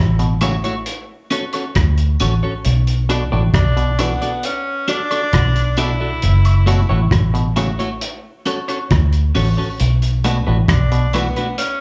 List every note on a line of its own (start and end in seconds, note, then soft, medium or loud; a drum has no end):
0.00 0.56 A1 medium
0.19 0.34 B2 medium
0.19 closed hi-hat medium
0.41 0.56 C#3 medium
0.41 0.54 A3 medium
0.41 0.55 E4 medium
0.41 0.55 F#4 medium
0.41 0.55 C#5 loud
0.41 closed hi-hat medium
0.41 tambourine medium
0.41 high woodblock medium
0.64 0.75 A3 medium
0.64 0.74 E4 medium
0.64 0.74 F#4 medium
0.64 0.74 C#5 medium
0.64 closed hi-hat soft
0.86 closed hi-hat medium
1.31 1.43 C#4 medium
1.31 1.44 F#4 medium
1.31 1.44 A4 medium
1.31 1.44 C#5 medium
1.31 closed hi-hat medium
1.31 tambourine soft
1.53 1.64 C#4 medium
1.53 1.64 F#4 medium
1.53 1.64 A4 medium
1.53 1.63 C#5 medium
1.53 closed hi-hat soft
1.53 high woodblock medium
1.75 2.16 D2 medium
1.75 kick medium
1.75 cross-stick loud
1.75 closed hi-hat medium
1.98 closed hi-hat medium
2.20 2.41 A1 medium
2.20 2.33 C#4 medium
2.20 2.33 F#4 medium
2.20 2.34 A4 medium
2.20 2.34 C#5 medium
2.20 closed hi-hat medium
2.20 tambourine medium
2.43 2.53 C#4 soft
2.43 2.53 F#4 soft
2.43 2.53 A4 medium
2.43 2.53 C#5 medium
2.65 3.25 B1 loud
2.65 closed hi-hat medium
2.87 closed hi-hat medium
3.09 3.24 B2 medium
3.09 3.22 D4 medium
3.09 3.22 F#4 medium
3.09 3.23 A4 medium
3.09 3.23 D5 medium
3.09 closed hi-hat medium
3.09 tambourine medium
3.32 3.52 A1 medium
3.32 3.46 A2 medium
3.32 3.43 D4 soft
3.32 3.42 F#4 medium
3.32 3.42 A4 medium
3.32 3.42 D5 medium
3.54 4.14 B1 medium
3.54 4.02 D4 medium
3.54 kick loud
3.54 cross-stick loud
3.54 closed hi-hat medium
3.77 3.91 B2 medium
3.77 closed hi-hat medium
3.99 4.14 E3 medium
3.99 4.47 B3 medium
3.99 4.12 D4 medium
3.99 4.12 F#4 medium
3.99 4.12 A4 medium
3.99 4.12 D5 medium
3.99 closed hi-hat medium
3.99 tambourine medium
3.99 high woodblock medium
4.22 4.32 D4 soft
4.22 4.32 F#4 soft
4.22 4.31 A4 medium
4.22 4.31 D5 medium
4.22 closed hi-hat soft
4.43 4.88 C#4 loud
4.43 closed hi-hat medium
4.88 5.01 D4 medium
4.88 5.80 D4 loud
4.88 5.01 F#4 loud
4.88 5.01 A4 medium
4.88 5.02 D5 medium
4.88 closed hi-hat medium
4.88 tambourine medium
5.11 5.21 D4 medium
5.11 5.21 F#4 medium
5.11 5.21 A4 medium
5.11 5.20 D5 medium
5.11 closed hi-hat soft
5.11 high woodblock medium
5.33 6.13 B1 medium
5.33 5.48 D3 medium
5.33 kick medium
5.33 cross-stick loud
5.33 closed hi-hat medium
5.56 closed hi-hat medium
5.77 5.92 B2 medium
5.77 5.90 D4 medium
5.77 7.12 E4 medium
5.77 5.90 F#4 medium
5.77 5.91 A4 medium
5.77 5.91 D5 medium
5.77 closed hi-hat medium
5.77 tambourine medium
6.00 6.11 D4 soft
6.00 6.10 F#4 medium
6.00 6.10 A4 medium
6.00 6.10 D5 medium
6.22 6.83 F#1 medium
6.22 closed hi-hat medium
6.45 closed hi-hat medium
6.45 high woodblock medium
6.66 6.82 B2 medium
6.66 6.79 A3 medium
6.66 6.80 E4 medium
6.66 6.80 F#4 loud
6.66 6.80 C#5 medium
6.66 closed hi-hat medium
6.66 tambourine medium
6.89 7.10 A1 medium
6.89 7.04 A2 medium
6.89 7.00 A3 soft
6.89 7.00 E4 medium
6.89 6.99 F#4 medium
6.89 6.99 C#5 medium
7.11 7.71 A1 medium
7.11 kick loud
7.11 cross-stick loud
7.11 closed hi-hat medium
7.34 7.48 B2 medium
7.34 closed hi-hat soft
7.56 7.71 C#3 medium
7.56 7.69 A3 medium
7.56 7.69 E4 medium
7.56 7.69 F#4 medium
7.56 7.70 C#5 medium
7.56 closed hi-hat medium
7.56 tambourine medium
7.56 high woodblock medium
7.79 7.89 A3 medium
7.79 7.89 E4 medium
7.79 7.89 F#4 medium
7.79 7.89 C#5 medium
7.79 closed hi-hat soft
8.01 closed hi-hat medium
8.45 8.58 C#4 medium
8.45 8.59 F#4 medium
8.45 8.59 A4 medium
8.45 8.59 C#5 medium
8.45 closed hi-hat medium
8.45 tambourine soft
8.68 8.79 C#4 medium
8.68 8.79 F#4 medium
8.68 8.78 A4 medium
8.68 8.78 C#5 medium
8.68 closed hi-hat medium
8.68 high woodblock medium
8.91 9.31 D2 medium
8.91 kick loud
8.91 cross-stick loud
8.91 closed hi-hat medium
9.13 closed hi-hat soft
9.35 9.56 A1 medium
9.35 9.48 C#4 medium
9.35 9.48 F#4 medium
9.35 9.48 A4 medium
9.35 9.48 C#5 medium
9.35 open hi-hat medium
9.35 tambourine medium
9.57 9.68 C#4 soft
9.57 9.68 F#4 soft
9.57 9.68 A4 medium
9.57 9.67 C#5 medium
9.80 10.40 B1 medium
9.80 closed hi-hat medium
10.02 closed hi-hat medium
10.24 10.39 B2 medium
10.24 10.37 A3 medium
10.24 10.37 D4 medium
10.24 10.38 F#4 medium
10.24 10.38 B4 medium
10.24 closed hi-hat medium
10.24 tambourine soft
10.47 10.67 A1 medium
10.47 10.61 A2 medium
10.47 10.57 A3 soft
10.47 10.57 D4 soft
10.47 10.57 F#4 medium
10.47 10.56 B4 medium
10.68 11.29 B1 medium
10.68 11.17 D4 medium
10.68 kick loud
10.68 cross-stick loud
10.68 closed hi-hat medium
10.92 11.06 B2 medium
10.92 closed hi-hat medium
11.13 11.28 E3 medium
11.13 11.26 A3 medium
11.13 11.58 B3 medium
11.13 11.27 D4 medium
11.13 11.27 F#4 medium
11.13 11.27 B4 medium
11.13 closed hi-hat medium
11.13 tambourine medium
11.13 high woodblock medium
11.36 11.47 A3 medium
11.36 11.47 D4 medium
11.36 11.47 F#4 medium
11.36 11.46 B4 medium
11.36 closed hi-hat soft
11.58 11.81 C#4 medium
11.58 closed hi-hat medium